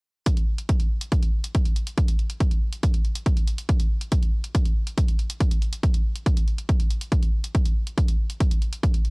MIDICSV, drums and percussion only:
0, 0, Header, 1, 2, 480
1, 0, Start_track
1, 0, Tempo, 428571
1, 292, Time_signature, 4, 2, 24, 8
1, 10195, End_track
2, 0, Start_track
2, 0, Title_t, "Drums"
2, 293, Note_on_c, 9, 36, 116
2, 293, Note_on_c, 9, 42, 84
2, 405, Note_off_c, 9, 36, 0
2, 405, Note_off_c, 9, 42, 0
2, 414, Note_on_c, 9, 42, 53
2, 526, Note_off_c, 9, 42, 0
2, 653, Note_on_c, 9, 42, 50
2, 765, Note_off_c, 9, 42, 0
2, 773, Note_on_c, 9, 36, 110
2, 773, Note_on_c, 9, 42, 85
2, 885, Note_off_c, 9, 36, 0
2, 885, Note_off_c, 9, 42, 0
2, 893, Note_on_c, 9, 42, 52
2, 1005, Note_off_c, 9, 42, 0
2, 1133, Note_on_c, 9, 42, 52
2, 1245, Note_off_c, 9, 42, 0
2, 1253, Note_on_c, 9, 36, 117
2, 1253, Note_on_c, 9, 42, 80
2, 1365, Note_off_c, 9, 36, 0
2, 1365, Note_off_c, 9, 42, 0
2, 1373, Note_on_c, 9, 42, 53
2, 1485, Note_off_c, 9, 42, 0
2, 1613, Note_on_c, 9, 42, 54
2, 1725, Note_off_c, 9, 42, 0
2, 1732, Note_on_c, 9, 42, 77
2, 1733, Note_on_c, 9, 36, 109
2, 1844, Note_off_c, 9, 42, 0
2, 1845, Note_off_c, 9, 36, 0
2, 1853, Note_on_c, 9, 42, 53
2, 1965, Note_off_c, 9, 42, 0
2, 1972, Note_on_c, 9, 42, 49
2, 2084, Note_off_c, 9, 42, 0
2, 2093, Note_on_c, 9, 42, 63
2, 2205, Note_off_c, 9, 42, 0
2, 2213, Note_on_c, 9, 36, 120
2, 2213, Note_on_c, 9, 42, 82
2, 2325, Note_off_c, 9, 36, 0
2, 2325, Note_off_c, 9, 42, 0
2, 2333, Note_on_c, 9, 42, 53
2, 2445, Note_off_c, 9, 42, 0
2, 2453, Note_on_c, 9, 42, 37
2, 2565, Note_off_c, 9, 42, 0
2, 2573, Note_on_c, 9, 42, 53
2, 2685, Note_off_c, 9, 42, 0
2, 2693, Note_on_c, 9, 36, 121
2, 2693, Note_on_c, 9, 42, 81
2, 2805, Note_off_c, 9, 36, 0
2, 2805, Note_off_c, 9, 42, 0
2, 2814, Note_on_c, 9, 42, 53
2, 2926, Note_off_c, 9, 42, 0
2, 3053, Note_on_c, 9, 42, 54
2, 3165, Note_off_c, 9, 42, 0
2, 3173, Note_on_c, 9, 36, 118
2, 3173, Note_on_c, 9, 42, 81
2, 3285, Note_off_c, 9, 36, 0
2, 3285, Note_off_c, 9, 42, 0
2, 3293, Note_on_c, 9, 42, 52
2, 3405, Note_off_c, 9, 42, 0
2, 3413, Note_on_c, 9, 42, 36
2, 3525, Note_off_c, 9, 42, 0
2, 3533, Note_on_c, 9, 42, 53
2, 3645, Note_off_c, 9, 42, 0
2, 3653, Note_on_c, 9, 36, 115
2, 3653, Note_on_c, 9, 42, 76
2, 3765, Note_off_c, 9, 36, 0
2, 3765, Note_off_c, 9, 42, 0
2, 3773, Note_on_c, 9, 42, 53
2, 3885, Note_off_c, 9, 42, 0
2, 3893, Note_on_c, 9, 42, 49
2, 4005, Note_off_c, 9, 42, 0
2, 4013, Note_on_c, 9, 42, 66
2, 4125, Note_off_c, 9, 42, 0
2, 4133, Note_on_c, 9, 36, 118
2, 4133, Note_on_c, 9, 42, 83
2, 4245, Note_off_c, 9, 36, 0
2, 4245, Note_off_c, 9, 42, 0
2, 4253, Note_on_c, 9, 42, 52
2, 4365, Note_off_c, 9, 42, 0
2, 4493, Note_on_c, 9, 42, 53
2, 4605, Note_off_c, 9, 42, 0
2, 4613, Note_on_c, 9, 36, 121
2, 4613, Note_on_c, 9, 42, 79
2, 4725, Note_off_c, 9, 36, 0
2, 4725, Note_off_c, 9, 42, 0
2, 4733, Note_on_c, 9, 42, 51
2, 4845, Note_off_c, 9, 42, 0
2, 4973, Note_on_c, 9, 42, 50
2, 5085, Note_off_c, 9, 42, 0
2, 5093, Note_on_c, 9, 36, 123
2, 5093, Note_on_c, 9, 42, 77
2, 5205, Note_off_c, 9, 36, 0
2, 5205, Note_off_c, 9, 42, 0
2, 5213, Note_on_c, 9, 42, 53
2, 5325, Note_off_c, 9, 42, 0
2, 5453, Note_on_c, 9, 42, 54
2, 5565, Note_off_c, 9, 42, 0
2, 5573, Note_on_c, 9, 36, 116
2, 5573, Note_on_c, 9, 42, 76
2, 5685, Note_off_c, 9, 36, 0
2, 5685, Note_off_c, 9, 42, 0
2, 5694, Note_on_c, 9, 42, 53
2, 5806, Note_off_c, 9, 42, 0
2, 5813, Note_on_c, 9, 42, 50
2, 5925, Note_off_c, 9, 42, 0
2, 5933, Note_on_c, 9, 42, 62
2, 6045, Note_off_c, 9, 42, 0
2, 6053, Note_on_c, 9, 36, 119
2, 6053, Note_on_c, 9, 42, 78
2, 6165, Note_off_c, 9, 36, 0
2, 6165, Note_off_c, 9, 42, 0
2, 6174, Note_on_c, 9, 42, 51
2, 6286, Note_off_c, 9, 42, 0
2, 6294, Note_on_c, 9, 42, 34
2, 6406, Note_off_c, 9, 42, 0
2, 6414, Note_on_c, 9, 42, 51
2, 6526, Note_off_c, 9, 42, 0
2, 6533, Note_on_c, 9, 36, 116
2, 6533, Note_on_c, 9, 42, 82
2, 6645, Note_off_c, 9, 36, 0
2, 6645, Note_off_c, 9, 42, 0
2, 6654, Note_on_c, 9, 42, 49
2, 6766, Note_off_c, 9, 42, 0
2, 6894, Note_on_c, 9, 42, 49
2, 7006, Note_off_c, 9, 42, 0
2, 7013, Note_on_c, 9, 36, 121
2, 7013, Note_on_c, 9, 42, 80
2, 7125, Note_off_c, 9, 36, 0
2, 7125, Note_off_c, 9, 42, 0
2, 7134, Note_on_c, 9, 42, 50
2, 7246, Note_off_c, 9, 42, 0
2, 7253, Note_on_c, 9, 42, 34
2, 7365, Note_off_c, 9, 42, 0
2, 7374, Note_on_c, 9, 42, 50
2, 7486, Note_off_c, 9, 42, 0
2, 7493, Note_on_c, 9, 36, 116
2, 7493, Note_on_c, 9, 42, 73
2, 7605, Note_off_c, 9, 36, 0
2, 7605, Note_off_c, 9, 42, 0
2, 7614, Note_on_c, 9, 42, 50
2, 7726, Note_off_c, 9, 42, 0
2, 7733, Note_on_c, 9, 42, 46
2, 7845, Note_off_c, 9, 42, 0
2, 7854, Note_on_c, 9, 42, 60
2, 7966, Note_off_c, 9, 42, 0
2, 7973, Note_on_c, 9, 36, 117
2, 7973, Note_on_c, 9, 42, 75
2, 8085, Note_off_c, 9, 36, 0
2, 8085, Note_off_c, 9, 42, 0
2, 8094, Note_on_c, 9, 42, 50
2, 8206, Note_off_c, 9, 42, 0
2, 8333, Note_on_c, 9, 42, 47
2, 8445, Note_off_c, 9, 42, 0
2, 8453, Note_on_c, 9, 36, 117
2, 8453, Note_on_c, 9, 42, 77
2, 8565, Note_off_c, 9, 36, 0
2, 8565, Note_off_c, 9, 42, 0
2, 8573, Note_on_c, 9, 42, 49
2, 8685, Note_off_c, 9, 42, 0
2, 8814, Note_on_c, 9, 42, 47
2, 8926, Note_off_c, 9, 42, 0
2, 8933, Note_on_c, 9, 36, 112
2, 8933, Note_on_c, 9, 42, 78
2, 9045, Note_off_c, 9, 36, 0
2, 9045, Note_off_c, 9, 42, 0
2, 9054, Note_on_c, 9, 42, 47
2, 9166, Note_off_c, 9, 42, 0
2, 9293, Note_on_c, 9, 42, 51
2, 9405, Note_off_c, 9, 42, 0
2, 9413, Note_on_c, 9, 36, 113
2, 9413, Note_on_c, 9, 42, 75
2, 9525, Note_off_c, 9, 36, 0
2, 9525, Note_off_c, 9, 42, 0
2, 9534, Note_on_c, 9, 42, 50
2, 9646, Note_off_c, 9, 42, 0
2, 9653, Note_on_c, 9, 42, 47
2, 9765, Note_off_c, 9, 42, 0
2, 9774, Note_on_c, 9, 42, 59
2, 9886, Note_off_c, 9, 42, 0
2, 9893, Note_on_c, 9, 36, 118
2, 9894, Note_on_c, 9, 42, 74
2, 10005, Note_off_c, 9, 36, 0
2, 10006, Note_off_c, 9, 42, 0
2, 10014, Note_on_c, 9, 42, 51
2, 10126, Note_off_c, 9, 42, 0
2, 10133, Note_on_c, 9, 42, 34
2, 10195, Note_off_c, 9, 42, 0
2, 10195, End_track
0, 0, End_of_file